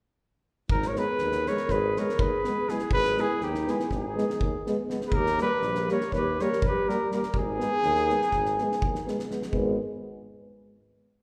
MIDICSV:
0, 0, Header, 1, 7, 480
1, 0, Start_track
1, 0, Key_signature, 5, "minor"
1, 0, Tempo, 489796
1, 690, Time_signature, 9, 3, 24, 8
1, 11001, End_track
2, 0, Start_track
2, 0, Title_t, "Cornet"
2, 0, Program_c, 0, 56
2, 693, Note_on_c, 0, 70, 105
2, 856, Note_on_c, 0, 73, 79
2, 870, Note_off_c, 0, 70, 0
2, 967, Note_on_c, 0, 71, 110
2, 981, Note_off_c, 0, 73, 0
2, 1450, Note_on_c, 0, 73, 98
2, 1464, Note_off_c, 0, 71, 0
2, 1677, Note_on_c, 0, 71, 95
2, 1692, Note_off_c, 0, 73, 0
2, 1943, Note_on_c, 0, 73, 81
2, 1958, Note_off_c, 0, 71, 0
2, 2158, Note_on_c, 0, 71, 92
2, 2172, Note_off_c, 0, 73, 0
2, 2642, Note_on_c, 0, 68, 88
2, 2657, Note_off_c, 0, 71, 0
2, 2859, Note_off_c, 0, 68, 0
2, 2873, Note_on_c, 0, 71, 123
2, 3143, Note_on_c, 0, 68, 101
2, 3158, Note_off_c, 0, 71, 0
2, 3367, Note_on_c, 0, 67, 81
2, 3382, Note_off_c, 0, 68, 0
2, 3625, Note_on_c, 0, 68, 82
2, 3640, Note_off_c, 0, 67, 0
2, 3842, Note_off_c, 0, 68, 0
2, 3854, Note_on_c, 0, 68, 75
2, 4539, Note_off_c, 0, 68, 0
2, 4973, Note_on_c, 0, 71, 74
2, 5031, Note_on_c, 0, 70, 109
2, 5046, Note_off_c, 0, 71, 0
2, 5285, Note_off_c, 0, 70, 0
2, 5312, Note_on_c, 0, 71, 102
2, 5753, Note_off_c, 0, 71, 0
2, 5799, Note_on_c, 0, 73, 90
2, 6001, Note_off_c, 0, 73, 0
2, 6018, Note_on_c, 0, 71, 90
2, 6284, Note_on_c, 0, 73, 97
2, 6299, Note_off_c, 0, 71, 0
2, 6504, Note_off_c, 0, 73, 0
2, 6512, Note_on_c, 0, 71, 89
2, 6748, Note_on_c, 0, 70, 81
2, 6763, Note_off_c, 0, 71, 0
2, 6970, Note_off_c, 0, 70, 0
2, 6994, Note_on_c, 0, 70, 72
2, 7192, Note_off_c, 0, 70, 0
2, 7234, Note_on_c, 0, 68, 118
2, 8881, Note_off_c, 0, 68, 0
2, 11001, End_track
3, 0, Start_track
3, 0, Title_t, "Clarinet"
3, 0, Program_c, 1, 71
3, 692, Note_on_c, 1, 63, 68
3, 866, Note_on_c, 1, 70, 52
3, 881, Note_off_c, 1, 63, 0
3, 955, Note_on_c, 1, 68, 67
3, 970, Note_off_c, 1, 70, 0
3, 1449, Note_on_c, 1, 70, 71
3, 1464, Note_off_c, 1, 68, 0
3, 1685, Note_on_c, 1, 68, 75
3, 1700, Note_off_c, 1, 70, 0
3, 1954, Note_on_c, 1, 70, 75
3, 1969, Note_off_c, 1, 68, 0
3, 2179, Note_on_c, 1, 68, 75
3, 2194, Note_off_c, 1, 70, 0
3, 2657, Note_on_c, 1, 64, 62
3, 2672, Note_off_c, 1, 68, 0
3, 2866, Note_off_c, 1, 64, 0
3, 2878, Note_on_c, 1, 68, 83
3, 3133, Note_on_c, 1, 64, 70
3, 3148, Note_off_c, 1, 68, 0
3, 3369, Note_on_c, 1, 63, 83
3, 3384, Note_off_c, 1, 64, 0
3, 3634, Note_on_c, 1, 64, 68
3, 3648, Note_off_c, 1, 63, 0
3, 3843, Note_off_c, 1, 64, 0
3, 3849, Note_on_c, 1, 63, 59
3, 4536, Note_off_c, 1, 63, 0
3, 4980, Note_on_c, 1, 68, 61
3, 5063, Note_on_c, 1, 67, 88
3, 5078, Note_off_c, 1, 68, 0
3, 5301, Note_off_c, 1, 67, 0
3, 5311, Note_on_c, 1, 67, 78
3, 5753, Note_off_c, 1, 67, 0
3, 5795, Note_on_c, 1, 70, 68
3, 5999, Note_off_c, 1, 70, 0
3, 6057, Note_on_c, 1, 67, 84
3, 6298, Note_on_c, 1, 70, 81
3, 6313, Note_off_c, 1, 67, 0
3, 6511, Note_off_c, 1, 70, 0
3, 6547, Note_on_c, 1, 67, 81
3, 6793, Note_off_c, 1, 67, 0
3, 6793, Note_on_c, 1, 67, 68
3, 6993, Note_off_c, 1, 67, 0
3, 7018, Note_on_c, 1, 67, 60
3, 7205, Note_off_c, 1, 67, 0
3, 7244, Note_on_c, 1, 63, 68
3, 8886, Note_off_c, 1, 63, 0
3, 11001, End_track
4, 0, Start_track
4, 0, Title_t, "French horn"
4, 0, Program_c, 2, 60
4, 937, Note_on_c, 2, 59, 59
4, 1031, Note_off_c, 2, 59, 0
4, 1426, Note_on_c, 2, 59, 46
4, 1519, Note_off_c, 2, 59, 0
4, 1919, Note_on_c, 2, 59, 51
4, 2011, Note_off_c, 2, 59, 0
4, 2388, Note_on_c, 2, 59, 61
4, 2480, Note_off_c, 2, 59, 0
4, 2619, Note_on_c, 2, 59, 56
4, 2710, Note_off_c, 2, 59, 0
4, 3117, Note_on_c, 2, 59, 66
4, 3208, Note_off_c, 2, 59, 0
4, 3596, Note_on_c, 2, 59, 73
4, 3688, Note_off_c, 2, 59, 0
4, 4071, Note_on_c, 2, 59, 62
4, 4167, Note_off_c, 2, 59, 0
4, 4573, Note_on_c, 2, 59, 59
4, 4662, Note_off_c, 2, 59, 0
4, 4790, Note_on_c, 2, 59, 61
4, 4882, Note_off_c, 2, 59, 0
4, 5276, Note_on_c, 2, 58, 62
4, 5369, Note_off_c, 2, 58, 0
4, 5763, Note_on_c, 2, 58, 73
4, 5857, Note_off_c, 2, 58, 0
4, 6263, Note_on_c, 2, 58, 61
4, 6355, Note_off_c, 2, 58, 0
4, 6742, Note_on_c, 2, 58, 60
4, 6832, Note_off_c, 2, 58, 0
4, 6968, Note_on_c, 2, 58, 53
4, 7058, Note_off_c, 2, 58, 0
4, 7432, Note_on_c, 2, 59, 61
4, 7528, Note_off_c, 2, 59, 0
4, 7926, Note_on_c, 2, 59, 50
4, 8021, Note_off_c, 2, 59, 0
4, 8417, Note_on_c, 2, 59, 49
4, 8511, Note_off_c, 2, 59, 0
4, 8882, Note_on_c, 2, 59, 51
4, 8976, Note_off_c, 2, 59, 0
4, 9107, Note_on_c, 2, 59, 49
4, 9200, Note_off_c, 2, 59, 0
4, 9337, Note_on_c, 2, 59, 57
4, 9580, Note_off_c, 2, 59, 0
4, 11001, End_track
5, 0, Start_track
5, 0, Title_t, "Euphonium"
5, 0, Program_c, 3, 58
5, 942, Note_on_c, 3, 56, 57
5, 1034, Note_off_c, 3, 56, 0
5, 1457, Note_on_c, 3, 56, 60
5, 1544, Note_off_c, 3, 56, 0
5, 1946, Note_on_c, 3, 56, 65
5, 2033, Note_off_c, 3, 56, 0
5, 2429, Note_on_c, 3, 56, 59
5, 2513, Note_off_c, 3, 56, 0
5, 2643, Note_on_c, 3, 56, 58
5, 2729, Note_off_c, 3, 56, 0
5, 3114, Note_on_c, 3, 56, 61
5, 3205, Note_off_c, 3, 56, 0
5, 3611, Note_on_c, 3, 56, 55
5, 3701, Note_off_c, 3, 56, 0
5, 4076, Note_on_c, 3, 56, 80
5, 4170, Note_off_c, 3, 56, 0
5, 4576, Note_on_c, 3, 56, 82
5, 4665, Note_off_c, 3, 56, 0
5, 4799, Note_on_c, 3, 56, 64
5, 4889, Note_off_c, 3, 56, 0
5, 5289, Note_on_c, 3, 55, 66
5, 5380, Note_off_c, 3, 55, 0
5, 5771, Note_on_c, 3, 55, 60
5, 5863, Note_off_c, 3, 55, 0
5, 6268, Note_on_c, 3, 55, 69
5, 6359, Note_off_c, 3, 55, 0
5, 6738, Note_on_c, 3, 55, 67
5, 6829, Note_off_c, 3, 55, 0
5, 6977, Note_on_c, 3, 55, 50
5, 7065, Note_off_c, 3, 55, 0
5, 7456, Note_on_c, 3, 56, 57
5, 7547, Note_off_c, 3, 56, 0
5, 7939, Note_on_c, 3, 56, 52
5, 8031, Note_off_c, 3, 56, 0
5, 8437, Note_on_c, 3, 56, 64
5, 8527, Note_off_c, 3, 56, 0
5, 8898, Note_on_c, 3, 56, 63
5, 8988, Note_off_c, 3, 56, 0
5, 9116, Note_on_c, 3, 56, 42
5, 9208, Note_off_c, 3, 56, 0
5, 9319, Note_on_c, 3, 56, 66
5, 9570, Note_off_c, 3, 56, 0
5, 11001, End_track
6, 0, Start_track
6, 0, Title_t, "Tuba"
6, 0, Program_c, 4, 58
6, 694, Note_on_c, 4, 32, 75
6, 960, Note_off_c, 4, 32, 0
6, 1174, Note_on_c, 4, 39, 64
6, 1442, Note_off_c, 4, 39, 0
6, 1645, Note_on_c, 4, 32, 80
6, 1918, Note_off_c, 4, 32, 0
6, 2141, Note_on_c, 4, 39, 76
6, 2278, Note_off_c, 4, 39, 0
6, 2846, Note_on_c, 4, 32, 86
6, 3116, Note_off_c, 4, 32, 0
6, 3341, Note_on_c, 4, 39, 74
6, 3610, Note_off_c, 4, 39, 0
6, 3818, Note_on_c, 4, 32, 76
6, 4090, Note_off_c, 4, 32, 0
6, 4312, Note_on_c, 4, 39, 83
6, 4450, Note_off_c, 4, 39, 0
6, 5025, Note_on_c, 4, 39, 74
6, 5294, Note_off_c, 4, 39, 0
6, 5509, Note_on_c, 4, 34, 74
6, 5780, Note_off_c, 4, 34, 0
6, 6005, Note_on_c, 4, 39, 79
6, 6274, Note_off_c, 4, 39, 0
6, 6486, Note_on_c, 4, 34, 77
6, 6623, Note_off_c, 4, 34, 0
6, 7200, Note_on_c, 4, 32, 72
6, 7467, Note_off_c, 4, 32, 0
6, 7686, Note_on_c, 4, 39, 82
6, 7953, Note_off_c, 4, 39, 0
6, 8180, Note_on_c, 4, 32, 75
6, 8445, Note_off_c, 4, 32, 0
6, 8655, Note_on_c, 4, 39, 77
6, 8789, Note_off_c, 4, 39, 0
6, 9338, Note_on_c, 4, 32, 81
6, 9581, Note_off_c, 4, 32, 0
6, 11001, End_track
7, 0, Start_track
7, 0, Title_t, "Drums"
7, 681, Note_on_c, 9, 36, 89
7, 779, Note_off_c, 9, 36, 0
7, 807, Note_on_c, 9, 38, 31
7, 905, Note_off_c, 9, 38, 0
7, 940, Note_on_c, 9, 38, 28
7, 1038, Note_off_c, 9, 38, 0
7, 1158, Note_on_c, 9, 38, 22
7, 1256, Note_off_c, 9, 38, 0
7, 1291, Note_on_c, 9, 38, 25
7, 1389, Note_off_c, 9, 38, 0
7, 1436, Note_on_c, 9, 38, 24
7, 1534, Note_off_c, 9, 38, 0
7, 1541, Note_on_c, 9, 38, 24
7, 1639, Note_off_c, 9, 38, 0
7, 1655, Note_on_c, 9, 38, 21
7, 1658, Note_on_c, 9, 36, 49
7, 1753, Note_off_c, 9, 38, 0
7, 1756, Note_off_c, 9, 36, 0
7, 1925, Note_on_c, 9, 38, 27
7, 2023, Note_off_c, 9, 38, 0
7, 2049, Note_on_c, 9, 38, 23
7, 2147, Note_off_c, 9, 38, 0
7, 2148, Note_on_c, 9, 36, 93
7, 2246, Note_off_c, 9, 36, 0
7, 2395, Note_on_c, 9, 38, 28
7, 2493, Note_off_c, 9, 38, 0
7, 2632, Note_on_c, 9, 38, 29
7, 2730, Note_off_c, 9, 38, 0
7, 2734, Note_on_c, 9, 38, 22
7, 2832, Note_off_c, 9, 38, 0
7, 2848, Note_on_c, 9, 36, 81
7, 2946, Note_off_c, 9, 36, 0
7, 2985, Note_on_c, 9, 38, 25
7, 3083, Note_off_c, 9, 38, 0
7, 3110, Note_on_c, 9, 38, 24
7, 3208, Note_off_c, 9, 38, 0
7, 3340, Note_on_c, 9, 38, 18
7, 3438, Note_off_c, 9, 38, 0
7, 3475, Note_on_c, 9, 38, 26
7, 3573, Note_off_c, 9, 38, 0
7, 3602, Note_on_c, 9, 38, 23
7, 3700, Note_off_c, 9, 38, 0
7, 3721, Note_on_c, 9, 38, 24
7, 3819, Note_off_c, 9, 38, 0
7, 3828, Note_on_c, 9, 36, 50
7, 3832, Note_on_c, 9, 38, 18
7, 3926, Note_off_c, 9, 36, 0
7, 3930, Note_off_c, 9, 38, 0
7, 4098, Note_on_c, 9, 38, 21
7, 4196, Note_off_c, 9, 38, 0
7, 4213, Note_on_c, 9, 38, 25
7, 4311, Note_off_c, 9, 38, 0
7, 4319, Note_on_c, 9, 36, 73
7, 4417, Note_off_c, 9, 36, 0
7, 4572, Note_on_c, 9, 38, 21
7, 4670, Note_off_c, 9, 38, 0
7, 4801, Note_on_c, 9, 38, 26
7, 4899, Note_off_c, 9, 38, 0
7, 4912, Note_on_c, 9, 38, 23
7, 5010, Note_off_c, 9, 38, 0
7, 5015, Note_on_c, 9, 36, 76
7, 5113, Note_off_c, 9, 36, 0
7, 5158, Note_on_c, 9, 38, 25
7, 5256, Note_off_c, 9, 38, 0
7, 5274, Note_on_c, 9, 38, 27
7, 5372, Note_off_c, 9, 38, 0
7, 5506, Note_on_c, 9, 38, 19
7, 5604, Note_off_c, 9, 38, 0
7, 5634, Note_on_c, 9, 38, 24
7, 5732, Note_off_c, 9, 38, 0
7, 5770, Note_on_c, 9, 38, 20
7, 5868, Note_off_c, 9, 38, 0
7, 5888, Note_on_c, 9, 38, 23
7, 5986, Note_off_c, 9, 38, 0
7, 6000, Note_on_c, 9, 36, 45
7, 6008, Note_on_c, 9, 38, 17
7, 6098, Note_off_c, 9, 36, 0
7, 6106, Note_off_c, 9, 38, 0
7, 6266, Note_on_c, 9, 38, 23
7, 6364, Note_off_c, 9, 38, 0
7, 6395, Note_on_c, 9, 38, 22
7, 6490, Note_on_c, 9, 36, 85
7, 6493, Note_off_c, 9, 38, 0
7, 6588, Note_off_c, 9, 36, 0
7, 6757, Note_on_c, 9, 38, 21
7, 6855, Note_off_c, 9, 38, 0
7, 6974, Note_on_c, 9, 38, 24
7, 7072, Note_off_c, 9, 38, 0
7, 7085, Note_on_c, 9, 38, 22
7, 7183, Note_off_c, 9, 38, 0
7, 7191, Note_on_c, 9, 36, 64
7, 7289, Note_off_c, 9, 36, 0
7, 7451, Note_on_c, 9, 38, 21
7, 7549, Note_off_c, 9, 38, 0
7, 7672, Note_on_c, 9, 38, 20
7, 7770, Note_off_c, 9, 38, 0
7, 7793, Note_on_c, 9, 38, 20
7, 7891, Note_off_c, 9, 38, 0
7, 7933, Note_on_c, 9, 38, 22
7, 8031, Note_off_c, 9, 38, 0
7, 8052, Note_on_c, 9, 38, 23
7, 8149, Note_off_c, 9, 38, 0
7, 8149, Note_on_c, 9, 38, 21
7, 8158, Note_on_c, 9, 36, 50
7, 8247, Note_off_c, 9, 38, 0
7, 8256, Note_off_c, 9, 36, 0
7, 8286, Note_on_c, 9, 38, 21
7, 8384, Note_off_c, 9, 38, 0
7, 8412, Note_on_c, 9, 38, 18
7, 8510, Note_off_c, 9, 38, 0
7, 8543, Note_on_c, 9, 38, 24
7, 8641, Note_off_c, 9, 38, 0
7, 8645, Note_on_c, 9, 36, 72
7, 8743, Note_off_c, 9, 36, 0
7, 8770, Note_on_c, 9, 38, 22
7, 8868, Note_off_c, 9, 38, 0
7, 8898, Note_on_c, 9, 38, 27
7, 8996, Note_off_c, 9, 38, 0
7, 9008, Note_on_c, 9, 38, 27
7, 9106, Note_off_c, 9, 38, 0
7, 9121, Note_on_c, 9, 38, 27
7, 9219, Note_off_c, 9, 38, 0
7, 9234, Note_on_c, 9, 38, 27
7, 9332, Note_off_c, 9, 38, 0
7, 9338, Note_on_c, 9, 36, 68
7, 9436, Note_off_c, 9, 36, 0
7, 11001, End_track
0, 0, End_of_file